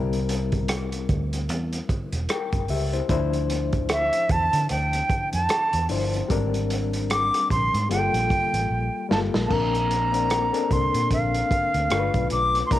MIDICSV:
0, 0, Header, 1, 5, 480
1, 0, Start_track
1, 0, Tempo, 801068
1, 1855, Time_signature, 4, 2, 24, 8
1, 7666, End_track
2, 0, Start_track
2, 0, Title_t, "Flute"
2, 0, Program_c, 0, 73
2, 2347, Note_on_c, 0, 76, 85
2, 2584, Note_on_c, 0, 81, 97
2, 2593, Note_off_c, 0, 76, 0
2, 2816, Note_off_c, 0, 81, 0
2, 2820, Note_on_c, 0, 79, 97
2, 3173, Note_off_c, 0, 79, 0
2, 3197, Note_on_c, 0, 81, 81
2, 3513, Note_off_c, 0, 81, 0
2, 4265, Note_on_c, 0, 86, 93
2, 4484, Note_off_c, 0, 86, 0
2, 4502, Note_on_c, 0, 84, 88
2, 4722, Note_off_c, 0, 84, 0
2, 4743, Note_on_c, 0, 79, 86
2, 5436, Note_off_c, 0, 79, 0
2, 5465, Note_on_c, 0, 81, 75
2, 5510, Note_off_c, 0, 81, 0
2, 5666, Note_on_c, 0, 81, 69
2, 5711, Note_on_c, 0, 82, 90
2, 5720, Note_off_c, 0, 81, 0
2, 6428, Note_on_c, 0, 84, 81
2, 6437, Note_off_c, 0, 82, 0
2, 6662, Note_off_c, 0, 84, 0
2, 6670, Note_on_c, 0, 77, 91
2, 7359, Note_off_c, 0, 77, 0
2, 7383, Note_on_c, 0, 86, 99
2, 7570, Note_off_c, 0, 86, 0
2, 7589, Note_on_c, 0, 84, 78
2, 7624, Note_on_c, 0, 82, 96
2, 7633, Note_off_c, 0, 84, 0
2, 7666, Note_off_c, 0, 82, 0
2, 7666, End_track
3, 0, Start_track
3, 0, Title_t, "Reed electric piano"
3, 0, Program_c, 1, 4
3, 0, Note_on_c, 1, 55, 81
3, 0, Note_on_c, 1, 60, 70
3, 0, Note_on_c, 1, 64, 71
3, 0, Note_on_c, 1, 70, 88
3, 40, Control_c, 1, 64, 127
3, 752, Note_off_c, 1, 55, 0
3, 754, Note_off_c, 1, 60, 0
3, 757, Note_off_c, 1, 64, 0
3, 760, Note_off_c, 1, 70, 0
3, 1378, Note_on_c, 1, 79, 58
3, 1381, Note_on_c, 1, 70, 50
3, 1604, Note_off_c, 1, 79, 0
3, 1606, Note_off_c, 1, 70, 0
3, 1619, Note_on_c, 1, 76, 65
3, 1622, Note_on_c, 1, 67, 55
3, 1749, Note_off_c, 1, 76, 0
3, 1751, Note_off_c, 1, 67, 0
3, 1757, Note_on_c, 1, 72, 60
3, 1760, Note_on_c, 1, 64, 51
3, 1849, Note_on_c, 1, 53, 80
3, 1851, Note_off_c, 1, 64, 0
3, 1853, Note_on_c, 1, 62, 77
3, 1857, Note_off_c, 1, 72, 0
3, 1858, Note_on_c, 1, 64, 80
3, 1862, Control_c, 1, 64, 0
3, 1864, Note_on_c, 1, 72, 91
3, 1965, Control_c, 1, 64, 127
3, 2674, Note_off_c, 1, 53, 0
3, 2676, Note_off_c, 1, 62, 0
3, 2678, Note_off_c, 1, 64, 0
3, 2681, Note_off_c, 1, 72, 0
3, 3529, Note_on_c, 1, 53, 68
3, 3533, Note_on_c, 1, 62, 67
3, 3539, Note_on_c, 1, 64, 63
3, 3543, Note_on_c, 1, 72, 79
3, 3740, Note_off_c, 1, 53, 0
3, 3742, Note_off_c, 1, 62, 0
3, 3745, Note_off_c, 1, 64, 0
3, 3747, Note_off_c, 1, 72, 0
3, 3765, Note_on_c, 1, 55, 87
3, 3771, Note_on_c, 1, 60, 75
3, 3777, Note_on_c, 1, 62, 76
3, 3781, Note_on_c, 1, 70, 93
3, 3783, Control_c, 1, 64, 0
3, 3881, Control_c, 1, 64, 127
3, 4592, Note_off_c, 1, 55, 0
3, 4595, Note_off_c, 1, 60, 0
3, 4598, Note_off_c, 1, 62, 0
3, 4600, Note_off_c, 1, 70, 0
3, 4731, Note_on_c, 1, 55, 73
3, 4735, Note_on_c, 1, 58, 64
3, 4741, Note_on_c, 1, 65, 64
3, 4744, Control_c, 1, 64, 0
3, 4745, Note_on_c, 1, 68, 61
3, 4784, Note_on_c, 1, 69, 74
3, 4786, Note_off_c, 1, 68, 0
3, 4856, Control_c, 1, 64, 127
3, 5357, Note_off_c, 1, 55, 0
3, 5360, Note_off_c, 1, 58, 0
3, 5362, Note_off_c, 1, 65, 0
3, 5384, Note_off_c, 1, 69, 0
3, 5447, Note_on_c, 1, 55, 77
3, 5453, Note_on_c, 1, 58, 68
3, 5456, Note_on_c, 1, 65, 75
3, 5462, Note_on_c, 1, 69, 84
3, 5659, Note_off_c, 1, 55, 0
3, 5662, Note_off_c, 1, 58, 0
3, 5664, Note_off_c, 1, 65, 0
3, 5667, Note_off_c, 1, 69, 0
3, 5684, Note_on_c, 1, 58, 72
3, 5690, Note_on_c, 1, 60, 66
3, 5695, Note_on_c, 1, 62, 60
3, 5698, Note_on_c, 1, 70, 76
3, 5705, Control_c, 1, 64, 0
3, 5803, Control_c, 1, 64, 127
3, 6003, Note_off_c, 1, 58, 0
3, 6006, Note_off_c, 1, 60, 0
3, 6008, Note_off_c, 1, 62, 0
3, 6010, Note_off_c, 1, 70, 0
3, 6066, Note_on_c, 1, 58, 62
3, 6073, Note_on_c, 1, 60, 62
3, 6076, Note_on_c, 1, 62, 64
3, 6081, Note_on_c, 1, 70, 74
3, 6266, Note_off_c, 1, 58, 0
3, 6270, Note_off_c, 1, 60, 0
3, 6272, Note_off_c, 1, 62, 0
3, 6274, Note_off_c, 1, 70, 0
3, 6308, Note_on_c, 1, 69, 64
3, 6310, Note_on_c, 1, 60, 59
3, 6316, Note_on_c, 1, 62, 57
3, 6322, Note_on_c, 1, 70, 72
3, 7105, Note_off_c, 1, 69, 0
3, 7106, Note_off_c, 1, 60, 0
3, 7109, Note_off_c, 1, 62, 0
3, 7112, Note_off_c, 1, 70, 0
3, 7129, Note_on_c, 1, 57, 71
3, 7134, Note_on_c, 1, 62, 66
3, 7140, Note_on_c, 1, 65, 67
3, 7144, Control_c, 1, 64, 0
3, 7144, Note_on_c, 1, 70, 64
3, 7183, Note_on_c, 1, 71, 79
3, 7186, Note_off_c, 1, 70, 0
3, 7252, Control_c, 1, 64, 127
3, 7549, Note_off_c, 1, 57, 0
3, 7551, Note_off_c, 1, 62, 0
3, 7554, Note_off_c, 1, 65, 0
3, 7576, Note_off_c, 1, 71, 0
3, 7612, Note_on_c, 1, 58, 65
3, 7616, Note_on_c, 1, 62, 64
3, 7622, Note_on_c, 1, 64, 60
3, 7623, Control_c, 1, 64, 0
3, 7628, Note_on_c, 1, 70, 76
3, 7666, Note_off_c, 1, 58, 0
3, 7666, Note_off_c, 1, 62, 0
3, 7666, Note_off_c, 1, 64, 0
3, 7666, Note_off_c, 1, 70, 0
3, 7666, End_track
4, 0, Start_track
4, 0, Title_t, "Fingered electric bass"
4, 0, Program_c, 2, 33
4, 0, Note_on_c, 2, 36, 92
4, 631, Note_off_c, 2, 36, 0
4, 653, Note_on_c, 2, 38, 73
4, 897, Note_off_c, 2, 38, 0
4, 897, Note_on_c, 2, 40, 70
4, 1077, Note_off_c, 2, 40, 0
4, 1273, Note_on_c, 2, 28, 77
4, 1349, Note_off_c, 2, 28, 0
4, 1515, Note_on_c, 2, 31, 73
4, 1591, Note_off_c, 2, 31, 0
4, 1613, Note_on_c, 2, 37, 79
4, 1795, Note_off_c, 2, 37, 0
4, 1856, Note_on_c, 2, 38, 94
4, 2451, Note_off_c, 2, 38, 0
4, 2574, Note_on_c, 2, 40, 88
4, 2680, Note_off_c, 2, 40, 0
4, 2715, Note_on_c, 2, 50, 79
4, 2791, Note_off_c, 2, 50, 0
4, 2819, Note_on_c, 2, 38, 76
4, 2999, Note_off_c, 2, 38, 0
4, 3197, Note_on_c, 2, 41, 76
4, 3272, Note_off_c, 2, 41, 0
4, 3436, Note_on_c, 2, 40, 74
4, 3512, Note_off_c, 2, 40, 0
4, 3537, Note_on_c, 2, 31, 79
4, 3718, Note_off_c, 2, 31, 0
4, 3776, Note_on_c, 2, 32, 91
4, 4371, Note_off_c, 2, 32, 0
4, 4499, Note_on_c, 2, 34, 83
4, 4603, Note_off_c, 2, 34, 0
4, 4636, Note_on_c, 2, 44, 96
4, 4712, Note_off_c, 2, 44, 0
4, 4735, Note_on_c, 2, 31, 79
4, 4840, Note_off_c, 2, 31, 0
4, 4873, Note_on_c, 2, 34, 88
4, 4950, Note_off_c, 2, 34, 0
4, 5113, Note_on_c, 2, 33, 62
4, 5190, Note_off_c, 2, 33, 0
4, 5215, Note_on_c, 2, 34, 66
4, 5320, Note_off_c, 2, 34, 0
4, 5458, Note_on_c, 2, 31, 80
4, 5562, Note_off_c, 2, 31, 0
4, 5599, Note_on_c, 2, 34, 83
4, 5674, Note_off_c, 2, 34, 0
4, 5698, Note_on_c, 2, 34, 101
4, 6292, Note_off_c, 2, 34, 0
4, 6417, Note_on_c, 2, 36, 80
4, 6522, Note_off_c, 2, 36, 0
4, 6556, Note_on_c, 2, 46, 85
4, 6632, Note_off_c, 2, 46, 0
4, 6656, Note_on_c, 2, 34, 79
4, 6837, Note_off_c, 2, 34, 0
4, 7037, Note_on_c, 2, 38, 71
4, 7113, Note_off_c, 2, 38, 0
4, 7137, Note_on_c, 2, 31, 75
4, 7242, Note_off_c, 2, 31, 0
4, 7278, Note_on_c, 2, 35, 84
4, 7353, Note_off_c, 2, 35, 0
4, 7378, Note_on_c, 2, 35, 78
4, 7559, Note_off_c, 2, 35, 0
4, 7617, Note_on_c, 2, 36, 95
4, 7666, Note_off_c, 2, 36, 0
4, 7666, End_track
5, 0, Start_track
5, 0, Title_t, "Drums"
5, 77, Note_on_c, 9, 42, 44
5, 137, Note_off_c, 9, 42, 0
5, 174, Note_on_c, 9, 42, 75
5, 234, Note_off_c, 9, 42, 0
5, 312, Note_on_c, 9, 42, 48
5, 315, Note_on_c, 9, 36, 75
5, 372, Note_off_c, 9, 42, 0
5, 375, Note_off_c, 9, 36, 0
5, 409, Note_on_c, 9, 42, 84
5, 414, Note_on_c, 9, 37, 99
5, 469, Note_off_c, 9, 42, 0
5, 474, Note_off_c, 9, 37, 0
5, 553, Note_on_c, 9, 42, 52
5, 613, Note_off_c, 9, 42, 0
5, 653, Note_on_c, 9, 36, 81
5, 653, Note_on_c, 9, 42, 57
5, 713, Note_off_c, 9, 36, 0
5, 713, Note_off_c, 9, 42, 0
5, 796, Note_on_c, 9, 42, 53
5, 856, Note_off_c, 9, 42, 0
5, 893, Note_on_c, 9, 42, 71
5, 953, Note_off_c, 9, 42, 0
5, 1034, Note_on_c, 9, 42, 50
5, 1094, Note_off_c, 9, 42, 0
5, 1133, Note_on_c, 9, 36, 84
5, 1135, Note_on_c, 9, 42, 58
5, 1193, Note_off_c, 9, 36, 0
5, 1195, Note_off_c, 9, 42, 0
5, 1273, Note_on_c, 9, 42, 48
5, 1333, Note_off_c, 9, 42, 0
5, 1371, Note_on_c, 9, 42, 88
5, 1378, Note_on_c, 9, 37, 98
5, 1431, Note_off_c, 9, 42, 0
5, 1438, Note_off_c, 9, 37, 0
5, 1513, Note_on_c, 9, 42, 54
5, 1514, Note_on_c, 9, 36, 74
5, 1573, Note_off_c, 9, 42, 0
5, 1574, Note_off_c, 9, 36, 0
5, 1608, Note_on_c, 9, 46, 59
5, 1668, Note_off_c, 9, 46, 0
5, 1758, Note_on_c, 9, 42, 45
5, 1818, Note_off_c, 9, 42, 0
5, 1853, Note_on_c, 9, 42, 84
5, 1854, Note_on_c, 9, 36, 89
5, 1913, Note_off_c, 9, 36, 0
5, 1913, Note_off_c, 9, 42, 0
5, 1997, Note_on_c, 9, 42, 42
5, 2057, Note_off_c, 9, 42, 0
5, 2096, Note_on_c, 9, 42, 74
5, 2156, Note_off_c, 9, 42, 0
5, 2233, Note_on_c, 9, 42, 45
5, 2235, Note_on_c, 9, 36, 80
5, 2293, Note_off_c, 9, 42, 0
5, 2295, Note_off_c, 9, 36, 0
5, 2330, Note_on_c, 9, 42, 79
5, 2335, Note_on_c, 9, 37, 102
5, 2390, Note_off_c, 9, 42, 0
5, 2395, Note_off_c, 9, 37, 0
5, 2473, Note_on_c, 9, 42, 50
5, 2533, Note_off_c, 9, 42, 0
5, 2573, Note_on_c, 9, 36, 84
5, 2573, Note_on_c, 9, 42, 65
5, 2633, Note_off_c, 9, 36, 0
5, 2633, Note_off_c, 9, 42, 0
5, 2715, Note_on_c, 9, 42, 56
5, 2775, Note_off_c, 9, 42, 0
5, 2811, Note_on_c, 9, 42, 72
5, 2871, Note_off_c, 9, 42, 0
5, 2954, Note_on_c, 9, 42, 52
5, 3014, Note_off_c, 9, 42, 0
5, 3053, Note_on_c, 9, 36, 86
5, 3054, Note_on_c, 9, 42, 62
5, 3113, Note_off_c, 9, 36, 0
5, 3114, Note_off_c, 9, 42, 0
5, 3192, Note_on_c, 9, 42, 49
5, 3252, Note_off_c, 9, 42, 0
5, 3290, Note_on_c, 9, 42, 83
5, 3297, Note_on_c, 9, 37, 104
5, 3350, Note_off_c, 9, 42, 0
5, 3357, Note_off_c, 9, 37, 0
5, 3433, Note_on_c, 9, 42, 51
5, 3493, Note_off_c, 9, 42, 0
5, 3528, Note_on_c, 9, 46, 60
5, 3588, Note_off_c, 9, 46, 0
5, 3679, Note_on_c, 9, 42, 49
5, 3739, Note_off_c, 9, 42, 0
5, 3775, Note_on_c, 9, 36, 91
5, 3775, Note_on_c, 9, 42, 83
5, 3835, Note_off_c, 9, 36, 0
5, 3835, Note_off_c, 9, 42, 0
5, 3919, Note_on_c, 9, 42, 45
5, 3979, Note_off_c, 9, 42, 0
5, 4016, Note_on_c, 9, 42, 72
5, 4076, Note_off_c, 9, 42, 0
5, 4155, Note_on_c, 9, 42, 50
5, 4215, Note_off_c, 9, 42, 0
5, 4255, Note_on_c, 9, 42, 81
5, 4260, Note_on_c, 9, 37, 98
5, 4315, Note_off_c, 9, 42, 0
5, 4320, Note_off_c, 9, 37, 0
5, 4399, Note_on_c, 9, 42, 52
5, 4402, Note_on_c, 9, 37, 29
5, 4459, Note_off_c, 9, 42, 0
5, 4462, Note_off_c, 9, 37, 0
5, 4497, Note_on_c, 9, 36, 80
5, 4500, Note_on_c, 9, 42, 61
5, 4556, Note_off_c, 9, 36, 0
5, 4560, Note_off_c, 9, 42, 0
5, 4640, Note_on_c, 9, 42, 54
5, 4700, Note_off_c, 9, 42, 0
5, 4738, Note_on_c, 9, 42, 74
5, 4798, Note_off_c, 9, 42, 0
5, 4879, Note_on_c, 9, 42, 48
5, 4939, Note_off_c, 9, 42, 0
5, 4975, Note_on_c, 9, 36, 83
5, 4979, Note_on_c, 9, 42, 57
5, 5035, Note_off_c, 9, 36, 0
5, 5038, Note_off_c, 9, 42, 0
5, 5117, Note_on_c, 9, 42, 51
5, 5176, Note_off_c, 9, 42, 0
5, 5459, Note_on_c, 9, 38, 74
5, 5519, Note_off_c, 9, 38, 0
5, 5598, Note_on_c, 9, 38, 76
5, 5658, Note_off_c, 9, 38, 0
5, 5696, Note_on_c, 9, 36, 96
5, 5696, Note_on_c, 9, 49, 79
5, 5756, Note_off_c, 9, 36, 0
5, 5756, Note_off_c, 9, 49, 0
5, 5840, Note_on_c, 9, 42, 46
5, 5900, Note_off_c, 9, 42, 0
5, 5937, Note_on_c, 9, 42, 77
5, 5997, Note_off_c, 9, 42, 0
5, 6075, Note_on_c, 9, 42, 53
5, 6135, Note_off_c, 9, 42, 0
5, 6173, Note_on_c, 9, 42, 82
5, 6178, Note_on_c, 9, 37, 95
5, 6233, Note_off_c, 9, 42, 0
5, 6238, Note_off_c, 9, 37, 0
5, 6317, Note_on_c, 9, 42, 51
5, 6376, Note_off_c, 9, 42, 0
5, 6416, Note_on_c, 9, 36, 83
5, 6417, Note_on_c, 9, 42, 64
5, 6476, Note_off_c, 9, 36, 0
5, 6477, Note_off_c, 9, 42, 0
5, 6558, Note_on_c, 9, 42, 51
5, 6618, Note_off_c, 9, 42, 0
5, 6655, Note_on_c, 9, 36, 75
5, 6655, Note_on_c, 9, 42, 78
5, 6715, Note_off_c, 9, 36, 0
5, 6715, Note_off_c, 9, 42, 0
5, 6797, Note_on_c, 9, 42, 48
5, 6857, Note_off_c, 9, 42, 0
5, 6896, Note_on_c, 9, 36, 93
5, 6898, Note_on_c, 9, 42, 58
5, 6956, Note_off_c, 9, 36, 0
5, 6958, Note_off_c, 9, 42, 0
5, 7036, Note_on_c, 9, 42, 49
5, 7096, Note_off_c, 9, 42, 0
5, 7133, Note_on_c, 9, 42, 86
5, 7141, Note_on_c, 9, 37, 110
5, 7193, Note_off_c, 9, 42, 0
5, 7200, Note_off_c, 9, 37, 0
5, 7275, Note_on_c, 9, 42, 52
5, 7276, Note_on_c, 9, 36, 80
5, 7335, Note_off_c, 9, 42, 0
5, 7336, Note_off_c, 9, 36, 0
5, 7371, Note_on_c, 9, 42, 61
5, 7431, Note_off_c, 9, 42, 0
5, 7520, Note_on_c, 9, 42, 46
5, 7580, Note_off_c, 9, 42, 0
5, 7616, Note_on_c, 9, 36, 99
5, 7616, Note_on_c, 9, 42, 85
5, 7666, Note_off_c, 9, 36, 0
5, 7666, Note_off_c, 9, 42, 0
5, 7666, End_track
0, 0, End_of_file